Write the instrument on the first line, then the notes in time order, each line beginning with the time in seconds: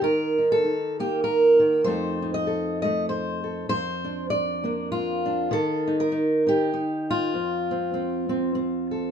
steel-string acoustic guitar
0.01 D#3 A#4
0.38 D#4
0.52 A4
0.64 D#4
1.00 A#3 G4
1.24 A#4
1.59 D#3
1.84 F2 A3 D#4 A4 C5
2.22 D#4
2.34 D#5
2.47 A4
2.82 A3 D#5
3.09 C5
3.44 A4
3.69 F2 C5
4.04 D4
4.30 D5
4.64 A#3 D4
4.92 F4
5.26 D4
5.51 D#3 A4
5.87 D#4
6.00 A#4
6.12 D#4
6.47 D#4 G4
6.74 D#4
7.11 F4
7.34 F2
7.71 C4
7.94 C4
8.29 C4
8.55 C4
8.91 A4